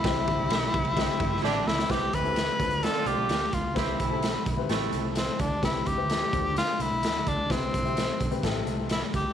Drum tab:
RD |x-x-x-xxx-x-----|----------------|----------------|----------------|
HH |----------------|x-xxx-xxx-x-x-x-|x-x-x-x-x-x-x-x-|x-x-x-x-x-x-x-x-|
SD |o---o---o---o-oo|o---o---o---o---|o---o---o---o---|o---o---o---o---|
BD |o-o---o-o-o-----|o-o---o-------o-|o-o---o-------o-|o-o---o-------o-|

RD |----------------|
HH |x-xxx-xxx-x-x-x-|
SD |o---o---o---o---|
BD |o-o---o-o-----o-|